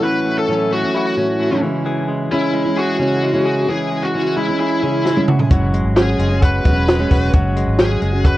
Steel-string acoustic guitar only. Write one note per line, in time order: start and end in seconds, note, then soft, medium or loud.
0.02 0.46 A2 medium
0.02 0.47 F#3 medium
0.02 0.49 C#4 medium
0.02 0.50 E4 medium
0.48 0.82 A2 medium
0.48 0.83 F#3 medium
0.48 0.84 C#4 medium
0.48 0.82 E4 medium
0.83 1.17 F#3 soft
0.83 1.17 C#4 soft
0.83 1.17 E4 soft
1.17 1.51 A2 medium
1.17 1.51 F#3 medium
1.17 1.51 C#4 medium
1.17 1.50 E4 medium
1.51 1.64 A2 medium
1.51 1.63 F#3 medium
1.51 1.63 C#4 medium
1.51 1.63 E4 medium
1.63 2.30 C#3 medium
1.63 2.32 G#3 medium
1.63 2.33 C#4 medium
1.63 2.32 E4 medium
2.31 2.66 C#3 medium
2.31 2.66 G#3 medium
2.31 2.66 C#4 medium
2.31 2.64 E4 medium
2.65 3.00 G#3 soft
2.65 3.00 C#4 soft
2.65 3.00 E4 soft
2.99 3.34 C#3 medium
2.99 3.34 G#3 medium
2.99 3.33 C#4 medium
2.99 3.32 E4 medium
3.34 3.67 C#3 medium
3.34 3.68 G#3 medium
3.34 3.69 C#4 medium
3.34 3.68 E4 medium
3.68 4.13 C#3 medium
3.68 4.15 G#3 medium
3.68 4.16 C#4 medium
3.68 4.15 E4 medium
4.14 4.49 C#3 medium
4.14 4.49 G#3 medium
4.14 4.49 C#4 medium
4.14 4.47 E4 medium
4.48 4.83 G#3 soft
4.48 4.84 C#4 medium
4.48 4.83 E4 medium
4.83 5.17 C#3 medium
4.83 5.17 G#3 medium
4.83 5.17 C#4 medium
4.83 5.16 E4 medium
5.17 5.50 C#3 medium
5.17 5.50 G#3 medium
5.17 5.51 C#4 medium
5.17 5.51 E4 medium
5.50 5.96 F#3 medium
5.50 5.96 G#3 medium
5.50 5.97 C#4 medium
5.50 5.98 F#4 medium
5.96 6.31 F#3 medium
5.96 6.31 G#3 medium
5.96 6.30 C#4 medium
5.96 6.29 F#4 medium
6.30 6.64 G#3 soft
6.30 6.65 C#4 medium
6.30 6.65 F#4 medium
6.64 6.99 F#3 medium
6.64 6.99 G#3 medium
6.64 6.99 C#4 medium
6.64 6.98 F#4 medium
6.99 7.32 F#3 medium
6.99 7.33 G#3 medium
6.99 7.34 C#4 medium
6.99 7.34 F#4 medium
7.33 7.79 F#3 medium
7.33 7.78 G#3 medium
7.33 7.80 C#4 medium
7.33 7.81 F#4 medium
7.79 8.14 F#3 medium
7.79 8.14 G#3 medium
7.79 8.13 C#4 medium
7.79 8.12 F#4 medium
8.13 8.38 G#3 soft
8.13 8.38 C#4 soft
8.13 8.38 F#4 medium